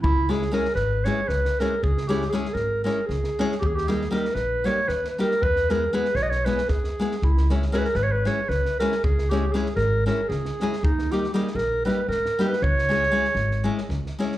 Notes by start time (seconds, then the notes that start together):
0.03 C#2 E4, kick
0.29 G#3 C#4 E4 G#4, snare
0.42 snare
0.52 G#3 C#4 E4 G#4 A#4, snare
0.65 snare
0.75 G#1 B4, snare
1.05 G#3 C#4 E4 G#4 C#5, snare
1.28 C#2 B4, snare
1.45 snare
1.59 G#3 C#4 E4 G#4 A#4, snare
1.83 C#2 G#4, kick
1.98 snare
2.08 G#3 C#4 E4 G4 G#4, snare
2.22 snare
2.31 G#3 C#4 E4 G#4, snare
2.45 snare
2.54 G#1 A#4, snare
2.84 G#3 C#4 E4 G#4 A#4, snare
3.06 C#2 G#4, snare
3.24 snare
3.39 G#3 C#4 E4 G#4, snare
3.52 snare
3.60 D#2 G4, kick
3.67 G#4
3.76 G4, snare
3.88 G3 A#3 D#4 G4 G#4, snare
4.01 snare
4.11 G3 A#3 D#4 G4 A#4, snare
4.25 snare
4.34 A#1 B4, snare
4.64 G3 A#3 D#4 G4 C#5, snare
4.88 D#2 B4, snare
5.05 snare
5.10 B4
5.18 G3 A#3 D#4 G4 A#4, snare
5.31 snare
5.42 E2 B4, kick
5.56 snare
5.70 G#3 B3 E4 G#4 A#4, snare
5.92 G#3 B3 E4 G#4 B4, snare
6.05 snare
6.15 B1 C#5, snare
6.23 D#5
6.30 C#5, snare
6.45 G#3 B3 E4 G#4 B4, snare
6.58 snare
6.69 E2 G#4, kick, snare
6.84 snare
6.99 G#3 B3 E4 G#4, snare
7.11 snare
7.22 C#2 E4, kick
7.37 snare
7.50 G#3 C#4 E4 G#4, snare
7.62 snare
7.72 G#3 C#4 E4 G#4 A#4, snare
7.78 B4
7.84 A#4, snare
7.95 G#1 B4, snare
8.04 C#5
8.12 B4
8.25 G#3 C#4 E4 G#4 C#5, snare
8.49 C#2 B4, snare
8.65 snare
8.79 G#3 C#4 E4 G#4 A#4, snare
8.92 snare
9.04 C#2 G#4, kick
9.18 snare
9.30 G#3 C#4 E4 G4 G#4, snare
9.52 G#3 C#4 E4 G#4, snare
9.66 snare
9.76 G#1 A#4, snare
10.06 G#3 C#4 E4 G#4 A#4, snare
10.29 C#2 G#4, snare
10.45 snare
10.60 G#3 C#4 E4 G#4, snare
10.73 snare
10.83 D#2 D#4, kick
10.99 snare
11.11 G3 A#3 D#4 G4, snare
11.24 snare
11.34 G3 A#3 D#4 G4 G#4, snare
11.47 snare
11.55 A#1 A#4, snare
11.85 G3 A#3 D#4 G4 B4, snare
12.08 G#2 A#4, snare
12.26 snare
12.39 G3 A#3 D#4 G4, snare
12.47 B4
12.53 snare
12.62 C#2 C#5, kick
12.78 snare
12.89 G#3 C#4 E4 G#4, snare
13.03 snare
13.11 G#3 C#4 E4 G#4, snare
13.25 snare
13.35 G#1, snare
13.51 snare
13.64 G#3 C#4 E4 G#4
13.78 snare
13.89 C#2, kick, snare
14.06 snare
14.19 G#3 C#4 E4 G#4, snare
14.32 snare